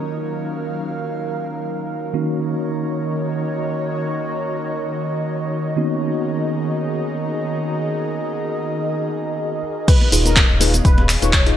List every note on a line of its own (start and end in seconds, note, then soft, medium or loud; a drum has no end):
0.00 2.11 D#3 medium
0.00 2.10 F#3 medium
0.00 2.11 A#3 medium
0.00 2.10 C#4 medium
0.00 2.11 C#4 medium
0.00 3.37 D#4 medium
0.00 2.11 F4 medium
0.00 2.12 F#4 medium
0.00 2.76 A#4 medium
0.00 0.18 D#5 medium
0.20 2.12 F5 medium
2.13 5.74 D#3 medium
2.13 9.84 D#3 medium
2.13 5.77 D#3 medium
2.13 5.74 A#3 medium
2.13 5.74 C#4 medium
2.13 5.73 D#4 medium
2.13 5.74 D#4 medium
2.13 5.74 F#4 medium
2.13 5.73 A#4 medium
2.13 7.66 C#5 medium
2.43 7.41 F#4 medium
2.43 6.48 C#5 medium
2.77 11.57 D#5 medium
5.76 9.61 D#3 medium
5.76 9.61 A#3 medium
5.76 9.61 B3 medium
5.76 9.61 C#4 medium
5.76 9.61 D#4 medium
5.76 10.78 D#4 medium
5.76 9.84 F#4 medium
5.76 9.61 F#4 medium
5.76 9.84 G#4 medium
5.76 9.84 A#4 medium
5.88 11.57 G#4 medium
7.70 9.86 D#5 medium
9.88 11.57 B3 medium
9.88 11.57 C#4 medium
9.88 11.57 G#4 medium
9.88 10.09 B4 loud
9.88 11.57 C#5 medium
9.88 11.57 F5 medium
9.88 kick loud
9.88 closed hi-hat medium
9.88 crash loud
9.88 shaker soft
10.01 muted conga medium
10.12 10.45 D#1 loud
10.12 10.32 D#4 loud
10.12 10.32 F4 medium
10.12 10.32 G#4 medium
10.12 10.32 B4 loud
10.12 open hi-hat loud
10.12 shaker medium
10.20 11.57 F5 medium
10.25 10.38 A#4 medium
10.25 closed hi-hat medium
10.25 high conga medium
10.25 shaker soft
10.36 kick loud
10.36 clap loud
10.36 closed hi-hat medium
10.36 muted conga medium
10.36 shaker soft
10.50 10.81 D#1 medium
10.60 10.74 D#4 medium
10.60 10.74 F4 medium
10.60 10.74 G#4 medium
10.60 10.74 B4 loud
10.60 open hi-hat loud
10.60 muted conga medium
10.60 high conga medium
10.60 shaker medium
10.74 closed hi-hat medium
10.74 high conga medium
10.74 shaker soft
10.85 11.17 D#1 medium
10.85 11.06 B4 medium
10.85 kick loud
10.85 closed hi-hat medium
10.85 shaker soft
10.98 muted conga medium
11.09 finger snap medium
11.09 clap medium
11.09 open hi-hat loud
11.09 shaker medium
11.22 11.53 D#1 loud
11.22 11.33 D#4 loud
11.22 11.33 F4 medium
11.22 11.33 G#4 medium
11.22 11.33 B4 loud
11.22 11.43 C#5 loud
11.22 closed hi-hat medium
11.22 muted conga medium
11.22 shaker soft
11.33 finger snap medium
11.33 kick loud
11.33 clap loud
11.33 closed hi-hat medium
11.33 shaker soft
11.46 11.57 D#4 loud
11.46 11.57 F4 medium
11.46 11.57 G#4 medium
11.46 11.57 D#5 loud
11.46 closed hi-hat medium